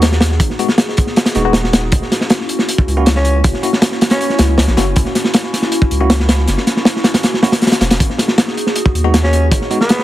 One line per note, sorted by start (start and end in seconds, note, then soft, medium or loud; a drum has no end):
0.00 0.39 D#2 medium
0.00 0.19 B3 medium
0.00 0.19 D#4 medium
0.00 0.19 F#4 medium
0.00 0.19 G#4 loud
0.00 snare loud
0.00 closed hi-hat medium
0.12 snare medium
0.21 snare loud
0.21 closed hi-hat medium
0.31 snare soft
0.40 0.49 G#1 loud
0.40 1.71 B3 medium
0.40 1.71 D#4 medium
0.40 1.71 F#4 medium
0.40 1.71 G#4 loud
0.40 kick loud
0.40 closed hi-hat medium
0.50 snare soft
0.59 0.66 G#3 medium
0.59 0.66 B3 medium
0.59 0.67 D#4 medium
0.59 0.66 F#4 medium
0.59 closed hi-hat medium
0.68 snare medium
0.78 snare loud
0.78 closed hi-hat medium
0.89 snare soft
0.97 kick medium
0.97 closed hi-hat medium
1.07 snare soft
1.16 snare loud
1.16 closed hi-hat medium
1.26 snare loud
1.26 closed hi-hat medium
1.35 1.91 D#1 loud
1.35 1.43 G#3 loud
1.35 1.43 B3 medium
1.35 1.43 D#4 medium
1.35 1.43 F#4 loud
1.35 snare soft
1.35 closed hi-hat medium
1.45 1.52 G#3 medium
1.45 1.52 B3 medium
1.45 1.52 D#4 medium
1.45 1.52 F#4 loud
1.53 snare loud
1.53 closed hi-hat medium
1.64 snare soft
1.73 snare loud
1.73 closed hi-hat medium
1.92 2.01 F#1 loud
1.92 3.23 A#3 medium
1.92 3.23 C#4 medium
1.92 3.23 E4 medium
1.92 3.23 F#4 loud
1.92 kick loud
1.92 closed hi-hat loud
2.02 snare soft
2.12 snare medium
2.12 closed hi-hat medium
2.21 snare medium
2.30 snare loud
2.30 closed hi-hat medium
2.41 snare soft
2.49 closed hi-hat medium
2.59 snare soft
2.69 closed hi-hat loud
2.78 kick loud
2.87 3.43 C#2 medium
2.87 closed hi-hat medium
2.97 3.08 A#3 loud
2.97 3.08 C#4 medium
2.97 3.08 E4 medium
2.97 3.08 F#4 loud
3.06 snare loud
3.06 closed hi-hat medium
3.15 3.39 C#4 medium
3.15 snare medium
3.25 closed hi-hat medium
3.44 3.53 F#1 loud
3.44 4.75 A#3 medium
3.44 4.75 C#4 medium
3.44 4.75 E4 medium
3.44 4.75 F#4 loud
3.44 kick loud
3.44 closed hi-hat medium
3.53 snare soft
3.63 3.70 A#3 medium
3.63 3.70 C#4 medium
3.63 3.70 E4 medium
3.63 3.70 F#4 medium
3.63 closed hi-hat medium
3.73 snare medium
3.82 snare loud
3.82 closed hi-hat medium
3.92 snare medium
4.01 snare loud
4.01 closed hi-hat medium
4.10 4.39 C#4 loud
4.10 snare loud
4.10 closed hi-hat medium
4.21 closed hi-hat medium
4.30 snare soft
4.39 4.58 C#2 loud
4.39 snare loud
4.39 closed hi-hat medium
4.58 4.67 C#2 medium
4.58 snare loud
4.58 closed hi-hat medium
4.68 4.76 A#1 loud
4.68 snare medium
4.77 4.94 F#1 medium
4.77 4.84 A#3 medium
4.77 4.84 C#4 medium
4.77 4.84 E4 medium
4.77 4.84 F#4 medium
4.77 snare medium
4.77 closed hi-hat medium
4.96 5.05 F#1 loud
4.96 6.27 A#3 medium
4.96 6.27 C#4 medium
4.96 6.27 E4 medium
4.96 6.27 F#4 loud
4.96 kick loud
4.96 closed hi-hat medium
5.05 snare soft
5.15 snare medium
5.15 closed hi-hat medium
5.24 snare soft
5.34 snare loud
5.34 closed hi-hat medium
5.43 snare soft
5.53 snare soft
5.53 closed hi-hat medium
5.62 snare soft
5.72 closed hi-hat medium
5.82 kick medium
5.91 6.46 C#2 medium
5.91 closed hi-hat medium
6.01 6.12 A#3 medium
6.01 6.12 C#4 medium
6.01 6.12 E4 medium
6.01 6.12 F#4 loud
6.10 snare loud
6.10 closed hi-hat medium
6.20 snare medium
6.29 snare loud
6.29 closed hi-hat medium
6.38 snare soft
6.48 6.57 F#1 loud
6.48 7.79 A#3 medium
6.48 7.79 C#4 medium
6.48 7.79 E4 medium
6.48 7.79 F#4 medium
6.48 snare soft
6.48 closed hi-hat medium
6.57 snare soft
6.67 snare soft
6.67 closed hi-hat medium
6.77 snare soft
6.85 snare loud
6.85 closed hi-hat medium
6.96 snare medium
7.04 snare loud
7.04 closed hi-hat medium
7.14 snare loud
7.14 closed hi-hat medium
7.23 snare loud
7.23 closed hi-hat medium
7.34 snare medium
7.43 7.50 A#3 medium
7.43 7.50 C#4 medium
7.43 7.50 E4 medium
7.43 7.50 F#4 loud
7.43 snare loud
7.43 closed hi-hat medium
7.52 snare loud
7.52 closed hi-hat medium
7.61 snare medium
7.61 closed hi-hat medium
7.67 snare medium
7.67 closed hi-hat medium
7.72 snare loud
7.72 closed hi-hat medium
7.81 7.98 E1 medium
7.81 snare loud
7.81 closed hi-hat medium
7.90 snare loud
7.90 closed hi-hat medium
8.00 8.09 G#1 loud
8.00 9.31 B3 medium
8.00 9.31 D#4 medium
8.00 9.31 F#4 medium
8.00 9.31 G#4 loud
8.00 kick loud
8.00 closed hi-hat loud
8.10 snare soft
8.18 snare medium
8.18 closed hi-hat medium
8.28 snare medium
8.38 snare loud
8.38 closed hi-hat medium
8.48 snare soft
8.57 closed hi-hat medium
8.67 snare soft
8.76 closed hi-hat medium
8.86 kick medium
8.94 9.50 D#2 medium
8.94 closed hi-hat medium
9.04 9.16 G#3 medium
9.04 9.16 B3 medium
9.04 9.16 D#4 medium
9.04 9.16 F#4 loud
9.14 snare loud
9.14 closed hi-hat medium
9.23 9.46 C#4 medium
9.23 snare medium
9.33 closed hi-hat medium
9.51 9.60 G#1 loud
9.51 10.04 B3 medium
9.51 10.04 D#4 medium
9.51 10.04 F#4 medium
9.51 10.04 G#4 loud
9.51 kick loud
9.51 closed hi-hat loud
9.61 snare soft
9.71 9.78 G#3 medium
9.71 9.78 B3 medium
9.71 9.78 D#4 medium
9.71 9.78 F#4 medium
9.71 closed hi-hat medium
9.81 10.03 B3 loud
9.81 snare medium
9.89 snare loud
9.89 closed hi-hat medium
9.99 snare medium